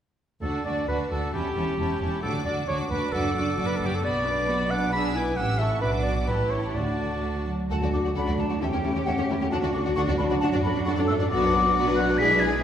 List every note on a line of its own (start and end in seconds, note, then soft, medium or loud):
0.42 0.50 D2 soft
0.42 0.64 D4 soft
0.42 0.65 F#4 soft
0.42 0.63 A4 soft
0.42 0.64 A5 soft
0.65 0.73 D2 soft
0.65 0.74 D2 soft
0.65 0.88 D4 soft
0.65 0.87 F#4 soft
0.65 0.87 D5 soft
0.65 0.88 A5 soft
0.88 0.96 D2 soft
0.88 0.97 D2 soft
0.88 1.10 D4 soft
0.88 1.10 F#4 soft
0.88 0.98 B4 medium
0.88 1.11 A5 soft
1.11 1.19 D2 soft
1.11 1.20 D2 soft
1.11 1.33 D4 soft
1.11 1.33 F#4 soft
1.11 1.33 A4 soft
1.11 1.32 A5 soft
1.33 1.42 E1 soft
1.33 1.42 E2 soft
1.33 1.54 C#4 soft
1.33 1.55 E4 soft
1.33 2.21 G4 medium
1.33 1.55 A5 soft
1.56 1.65 E1 soft
1.56 1.64 E2 soft
1.56 1.77 C#4 soft
1.56 1.78 E4 soft
1.56 1.78 A5 soft
1.79 1.87 E1 soft
1.79 1.87 E2 soft
1.79 1.99 C#4 soft
1.79 2.00 E4 soft
1.79 2.01 A5 soft
2.01 2.09 E1 soft
2.01 2.10 E2 soft
2.01 2.23 C#4 soft
2.01 2.23 E4 soft
2.01 2.23 A5 soft
2.22 2.31 D2 soft
2.22 2.32 D2 soft
2.22 2.44 D4 soft
2.22 2.45 F#4 soft
2.22 2.33 A4 medium
2.22 2.45 D6 soft
2.45 2.54 D2 soft
2.45 2.67 D4 soft
2.45 2.67 F#4 soft
2.45 2.56 D5 medium
2.45 2.67 D6 soft
2.68 2.76 D2 soft
2.68 2.77 D2 soft
2.68 2.90 D4 soft
2.68 2.90 F#4 soft
2.68 2.78 C#5 medium
2.68 2.90 D6 soft
2.90 2.99 D2 soft
2.90 3.13 D4 soft
2.90 3.13 F#4 soft
2.90 3.14 B4 medium
2.90 3.12 D6 soft
3.12 3.21 F#1 soft
3.12 3.22 F#2 medium
3.12 3.34 D4 soft
3.12 3.35 F#4 soft
3.12 3.68 A4 medium
3.12 3.34 D6 soft
3.35 3.43 F#1 soft
3.35 3.43 F#2 soft
3.35 3.57 D4 soft
3.35 3.57 F#4 soft
3.35 3.57 D6 soft
3.57 3.65 F#1 soft
3.57 3.65 F#2 soft
3.57 3.79 D4 soft
3.57 3.80 F#4 soft
3.57 3.80 D6 soft
3.67 3.78 B4 medium
3.76 3.88 F#1 soft
3.76 3.88 F#2 soft
3.76 4.03 D4 soft
3.76 3.87 A4 medium
3.81 4.03 F#4 soft
3.81 4.03 D6 soft
3.86 3.96 G4 medium
3.95 4.04 A4 medium
4.03 5.33 B1 soft
4.03 5.33 B2 medium
4.03 4.24 B3 soft
4.03 4.25 F#4 soft
4.03 4.72 D5 medium
4.03 4.24 B5 soft
4.26 4.48 D4 soft
4.26 4.49 B4 soft
4.26 4.48 D6 soft
4.48 4.71 B3 soft
4.48 4.71 F#4 soft
4.48 4.71 B5 soft
4.70 4.92 D4 soft
4.70 4.94 B4 soft
4.70 4.92 F#5 medium
4.70 4.94 D6 soft
4.93 5.14 D4 soft
4.93 5.15 G#4 soft
4.93 5.03 B5 medium
4.93 5.14 E6 soft
5.15 5.38 E4 soft
5.15 5.38 B4 soft
5.15 5.38 G#5 medium
5.15 5.38 D6 soft
5.36 5.82 A1 soft
5.36 5.82 A2 soft
5.36 5.58 C#4 soft
5.36 5.59 G4 soft
5.36 5.60 F#5 medium
5.36 5.58 E6 soft
5.59 5.82 E4 soft
5.59 5.83 A4 soft
5.59 5.80 E5 medium
5.59 5.82 C#6 soft
5.81 6.25 B1 soft
5.81 6.25 B2 soft
5.81 6.26 D4 soft
5.81 6.26 F#4 soft
5.81 5.92 B4 medium
5.81 6.26 D6 soft
6.03 6.14 D5 soft
6.27 6.76 A1 soft
6.27 6.75 A2 soft
6.27 6.75 E4 soft
6.27 6.76 G4 soft
6.27 6.52 B4 medium
6.27 6.74 A5 soft
6.50 6.76 C#5 soft
6.75 7.50 D2 soft
6.75 7.19 D3 soft
6.75 7.51 D4 soft
6.75 7.50 F#4 soft
6.75 7.47 D5 soft
6.75 7.49 A5 soft
7.23 7.45 A3 soft
7.47 7.70 F#3 soft
7.70 7.76 D2 soft
7.70 8.58 F#3 soft
7.70 7.75 A3 soft
7.70 8.58 D4 soft
7.70 8.13 F#4 soft
7.70 7.75 A4 soft
7.70 7.76 F#5 soft
7.70 7.92 A5 medium
7.82 7.87 D2 soft
7.82 7.87 A3 soft
7.82 7.87 F#4 soft
7.82 7.87 D5 soft
7.93 7.98 D2 soft
7.93 7.98 A3 soft
7.93 7.98 D4 soft
7.93 7.98 A4 soft
7.93 8.00 D6 medium
8.04 8.09 D2 soft
8.04 8.10 A3 soft
8.04 8.09 F#4 soft
8.04 8.09 D5 soft
8.16 8.21 D2 medium
8.16 8.21 A3 soft
8.16 8.61 D4 soft
8.16 8.20 A4 soft
8.16 8.21 F#5 soft
8.16 8.41 B5 medium
8.27 8.32 D2 soft
8.27 8.32 A3 soft
8.27 8.31 F#4 soft
8.27 8.32 D5 soft
8.38 8.44 D2 soft
8.38 8.44 A3 soft
8.38 8.43 D4 soft
8.38 8.44 A4 soft
8.38 8.62 A5 medium
8.49 8.55 D2 soft
8.49 8.55 A3 soft
8.49 8.54 F#4 soft
8.49 8.55 D5 soft
8.61 8.67 E2 medium
8.61 9.52 A3 soft
8.61 8.66 C#4 medium
8.61 9.52 C#4 soft
8.61 9.52 G4 medium
8.61 8.66 A4 medium
8.61 8.67 E5 medium
8.61 9.08 G5 medium
8.73 8.78 E2 soft
8.73 8.78 C#4 soft
8.73 8.77 G4 soft
8.73 8.78 C#5 soft
8.84 8.89 E2 soft
8.84 8.89 C#4 soft
8.84 8.89 E4 soft
8.84 8.89 A4 soft
8.96 9.01 E2 soft
8.96 9.01 C#4 soft
8.96 9.00 G4 soft
8.96 9.01 C#5 soft
9.06 9.12 E2 medium
9.06 9.11 C#4 medium
9.06 9.12 A4 soft
9.06 9.11 E5 medium
9.06 9.31 F#5 medium
9.18 9.24 E2 soft
9.18 9.23 C#4 soft
9.18 9.23 G4 soft
9.18 9.23 C#5 soft
9.29 9.34 E2 soft
9.29 9.34 C#4 soft
9.29 9.35 E4 soft
9.29 9.34 A4 soft
9.29 9.51 G5 medium
9.41 9.46 E2 soft
9.41 9.46 C#4 soft
9.41 9.46 G4 soft
9.41 9.45 C#5 soft
9.51 9.57 D2 medium
9.51 11.31 F#3 medium
9.51 9.56 D4 medium
9.51 11.28 D4 medium
9.51 10.40 F#4 medium
9.51 9.57 A4 medium
9.51 9.56 F#5 medium
9.51 9.57 A5 medium
9.63 9.68 D2 soft
9.63 9.68 D4 soft
9.63 9.68 F#4 soft
9.63 9.67 D5 soft
9.74 9.79 D2 soft
9.74 9.79 D4 medium
9.74 9.79 D4 soft
9.74 9.79 A4 soft
9.74 9.80 D6 medium
9.86 9.91 D2 soft
9.86 9.90 D4 soft
9.86 9.90 F#4 soft
9.86 9.91 D5 soft
9.96 10.02 D2 medium
9.96 10.02 D4 medium
9.96 10.01 A4 medium
9.96 10.01 F#5 medium
9.96 10.02 C#6 medium
10.08 10.13 D2 soft
10.08 10.13 D4 soft
10.08 10.13 F#4 soft
10.08 10.13 D5 soft
10.18 10.24 D2 soft
10.18 10.24 D4 soft
10.18 10.24 D4 medium
10.18 10.23 A4 medium
10.18 10.24 B5 medium
10.30 10.36 D2 soft
10.30 10.36 D4 medium
10.30 10.35 F#4 soft
10.30 10.35 D5 soft
10.40 10.47 F#2 medium
10.40 10.47 D4 medium
10.40 10.86 F#4 medium
10.40 10.47 F#4 medium
10.40 10.46 F#5 medium
10.40 10.46 A5 medium
10.53 10.58 F#2 soft
10.53 10.58 D4 soft
10.53 10.57 D5 soft
10.63 10.69 F#2 soft
10.63 10.70 A3 soft
10.63 10.70 D4 soft
10.63 10.69 A4 soft
10.63 10.84 B5 medium
10.74 10.81 F#2 soft
10.74 10.81 D4 medium
10.74 10.79 D5 soft
10.85 10.91 F#2 medium
10.85 10.92 D4 medium
10.85 10.92 F#4 medium
10.85 11.32 A4 medium
10.85 10.90 F#5 medium
10.85 10.91 C#6 medium
10.97 11.03 F#2 medium
10.97 11.03 D4 medium
10.97 11.04 D4 soft
10.97 11.02 D5 medium
11.07 11.14 F#2 soft
11.07 11.15 A3 medium
11.07 11.14 D4 medium
11.07 11.13 A4 medium
11.07 11.13 E6 medium
11.20 11.25 F#2 medium
11.20 11.26 D4 medium
11.20 11.24 D5 medium
11.29 11.71 B1 medium
11.29 12.18 F#3 medium
11.29 11.43 B3 medium
11.29 12.61 D4 medium
11.29 12.18 F#4 medium
11.29 11.43 F#4 medium
11.29 11.42 D5 medium
11.29 11.95 D6 medium
11.43 11.54 D4 soft
11.43 11.54 B4 medium
11.43 11.54 F#5 soft
11.54 11.65 B3 soft
11.54 11.65 F#4 medium
11.54 11.65 D5 soft
11.65 11.76 D4 medium
11.65 11.76 B4 soft
11.65 11.76 F#5 soft
11.75 12.15 B1 medium
11.75 11.86 B3 medium
11.75 11.86 F#4 medium
11.75 11.86 D5 medium
11.87 11.98 D4 soft
11.87 11.98 B4 medium
11.87 11.98 F#5 medium
11.96 12.09 B3 soft
11.96 12.09 F#4 soft
11.96 12.08 D5 soft
11.96 12.19 F#6 medium
12.08 12.20 D4 soft
12.08 12.20 B4 soft
12.08 12.19 F#5 soft
12.18 12.59 B1 medium
12.18 12.63 G#3 medium
12.18 12.30 E4 medium
12.18 12.63 G#4 medium
12.18 12.30 G#4 medium
12.18 12.30 D5 medium
12.18 12.41 B6 loud
12.30 12.42 D4 soft
12.30 12.42 B4 soft
12.30 12.41 E5 medium
12.39 12.53 E4 soft
12.39 12.53 G#4 soft
12.39 12.53 D5 soft
12.39 12.62 G#6 medium
12.52 12.63 D4 medium
12.52 12.63 B4 soft
12.52 12.63 E5 medium